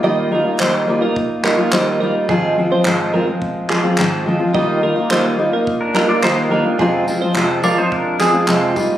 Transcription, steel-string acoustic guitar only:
\new Staff \with { instrumentName = "Steel-string acoustic guitar" } { \time 4/4 \key ees \major \tempo 4 = 107 <ees g bes ees' f'>8 <g bes ees' f'>16 <bes ees' f'>16 <ees g bes ees' f'>8 <g bes ees' f'>16 <bes ees' f'>8. <g bes ees' f'>16 <bes ees' f'>16 <ees g bes ees' f'>8 <g bes ees' f'>8 | <aes, ees f aes c' f'>8 <f aes c' f'>16 <f aes c' f'>16 <aes, ees f aes c' f'>8 <f aes c' f'>16 <f aes c' f'>8. <f aes c' f'>16 <f aes c' f'>16 <aes, ees f aes c' f'>8 <f aes c' f'>16 <f aes c' f'>16 | <ees g bes ees' f'>8 <g bes ees' f'>16 <bes ees' f'>16 <ees g bes ees' f'>8 <g bes ees' f'>16 <bes ees' f'>8. <g bes ees' f'>16 <bes ees' f'>16 <ees g bes ees' f'>8 <g bes ees' f'>16 <bes ees' f'>16 | <f, c f aes c' f'>8 <f aes c' f'>16 <f aes c' f'>16 <f, c f aes c' f'>8 <f aes c' f'>16 <f aes c' f'>8. <f aes c' f'>16 <f aes c' f'>16 <f, c f aes c' f'>8 <g bes ees' f'>8 | }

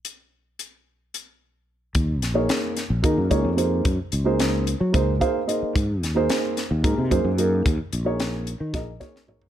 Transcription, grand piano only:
\new Staff \with { instrumentName = "Grand piano" } { \time 7/8 \key ees \dorian \tempo 4 = 111 << { r2. r8 | r2. r8 | r2 r8 f''8 ees''8 | r2. r8 |
r2 r8 des''4 | } \\ { r2. r8 | r8. <bes ees' aes' des''>8. r8 <bes ees' aes' bes'>16 r16 <bes ees' aes' des''>16 r16 <bes ees' aes' c''>8 | r8. <bes ees' aes' c''>8. r8 <bes ees' aes' c''>16 r16 <bes ees' aes' c''>16 r16 <bes ees' aes' c''>8 | r8. <bes ees' aes' c''>8. r8 <bes ees' aes' bes'>16 r16 <bes ees' aes' c''>16 r16 <bes ees' aes' bes'>8 |
r8. <bes ees' aes' des''>8. r8 <bes ees' aes' ees''>16 r16 <bes ees' aes'>16 r16 <bes ees' aes' des''>8 | } >> }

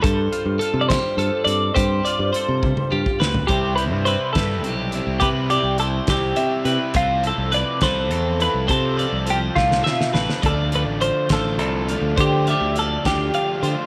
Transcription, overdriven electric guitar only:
\new Staff \with { instrumentName = "Overdriven electric guitar" } { \time 6/8 \key c \major \tempo 4. = 69 r2. | r2. | <c g c' e'>8 <g c' e'>4 <c g c' e'>8 <c g c' e'>8 <g c' e'>8 | <c g c' e'>8 <g c' e'>4 <c g c' e'>8 <c g c' e'>8 <g c' e'>8 |
<c f c' f' a'>8 <c' f' a'>4 <c f c' f' a'>8 <f c' f' a'>8 <c' f' a'>8 | <c f c' f' a'>8 <c' f' a'>4 <c f c' f' a'>8 <f c' f' a'>8 <c' f' a'>8 | <d a d' f'>8 <a d' f'>4 <d a d' f'>8 <d a d' f'>8 <a d' f'>8 | <d a d' f'>8 <a d' f'>4 <d a d' f'>8 <d a d' f'>8 <a d' f'>8 | }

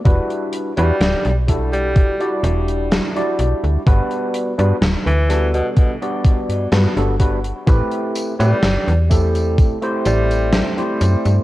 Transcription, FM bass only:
\new Staff \with { instrumentName = "FM bass" } { \clef bass \time 4/4 \key g \major \tempo 4 = 63 e,,16 r8 e,16 d,,16 b,,8. e,,16 r16 e,,8 r8 b,,16 d,16 | g,,16 r8 g,16 d,,16 d,8 r4 g,16 g,16 g,,8 r16 | a,,16 r8 a,16 g,,16 e,8. a,,16 r16 a,,8 r8 fis,16 g,16 | }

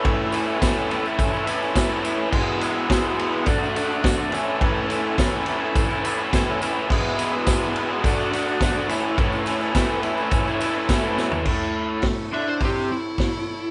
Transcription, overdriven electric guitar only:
\new Staff \with { instrumentName = "Overdriven electric guitar" } { \time 4/4 \key a \major \tempo 4 = 105 <a, e a cis' e'>8 <e a cis' e'>16 <a cis' e'>16 <a, e a cis' e'>8 <e a cis' e'>16 <a cis' e'>8 <a cis' e'>16 <e a cis' e'>16 <a cis' e'>16 <a, e a cis' e'>16 <a cis' e'>16 <e a cis' e'>8 | <e, b, e gis b e'>8 <e gis b e'>16 <e gis b e'>16 <e, b, e gis b e'>8 <e gis b e'>16 <e gis b e'>16 <d a d' fis'>16 <a d' fis'>16 <d a d' fis'>16 <a d' fis'>16 <d a d' fis'>16 <a d' fis'>16 <a, e a cis' e'>8 | <a, e a cis' e'>8 <e a cis' e'>16 <a cis' e'>16 <a, e a cis' e'>8 <e a cis' e'>16 <a cis' e'>8 <a cis' e'>16 <e a cis' e'>16 <a cis' e'>16 <a, e a cis' e'>16 <a cis' e'>16 <e a cis' e'>8 | <e, b, e gis b e'>8 <e gis b e'>16 <e gis b e'>16 <e, b, e gis b e'>8 <e gis b e'>16 <e gis b e'>16 <d a d' fis'>16 <a d' fis'>16 <d a d' fis'>16 <a d' fis'>16 <d a d' fis'>16 <a d' fis'>16 <a, e a cis' e'>8 |
<a, e a cis' e'>8 <e a cis' e'>16 <a cis' e'>16 <a, e a cis' e'>8 <e a cis' e'>16 <a cis' e'>8 <a cis' e'>16 <e a cis' e'>16 <a cis' e'>16 <a, e a cis' e'>16 <a cis' e'>16 <e a cis' e'>8 | <a, a>4 a,8 <d d'>8 <c c'>8 r4. | }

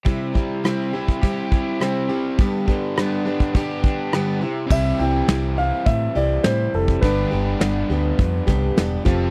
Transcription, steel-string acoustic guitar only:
\new Staff \with { instrumentName = "Steel-string acoustic guitar" } { \time 4/4 \key c \major \tempo 4 = 103 <c g c' e' g'>8 <c' e' g'>8 <c g c' e' g'>8 <c' e' g'>8 <g c' e' g'>4 <c g c' e' g'>8 <c' e' g'>8 | <g, d g b d' g'>8 <g b d' g'>8 <g, d g b d' g'>8 <g b d' g'>8 <g b d' g'>4 <g, d g b d' g'>8 <c' e' g'>8 | <c g c' e' g'>8 <c' e' g'>8 <g c' e' g'>8 <c' e' g'>4 <c' e' g'>8 <g c' e' g'>4 | <g, d g b d' g'>8 <g b d' g'>8 <g b d' g'>8 <g b d' g'>4 <g b d' g'>8 <g b d' g'>8 <f a c' f' g'>8 | }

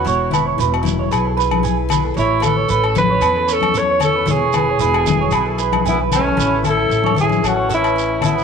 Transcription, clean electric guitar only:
\new Staff \with { instrumentName = "Clean electric guitar" } { \time 4/4 \key a \major \tempo 4 = 114 cis''8 b'16 cis''16 b'16 r8 cis''16 b'16 a'16 b'8 gis'16 r16 b'16 a'16 | cis''8 b'16 cis''16 b'16 a'8 cis''16 b'16 a'16 cis''8 a'16 cis''16 cis''16 b'16 | cis''8 b'16 cis''16 b'16 a'8 cis''16 b'16 a'16 b'8 gis'16 b'16 b'16 a'16 | b'8 a'16 a'8 cis''16 a'16 gis'16 a'16 cis''16 a'16 b'8 r16 a'16 b'16 | }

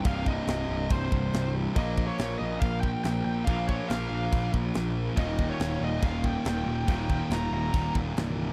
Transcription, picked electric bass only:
\new Staff \with { instrumentName = "Picked electric bass" } { \clef bass \time 4/4 \key bes \dorian \tempo 4 = 140 c,,4 c,,8 c,,8 c,,8 c,,8 c,,4 | bes,,4 bes,,8 bes,,8 bes,,4 bes,,8 bes,,8 | bes,,4 bes,,8 bes,,8 bes,,8 bes,,8 bes,,4 | ees,,4 ees,,8 ees,,8 ees,,4 ees,,8 ees,,8 |
ees,,4 ees,,8 ees,,8 ees,,8 ees,,8 c,,4 | }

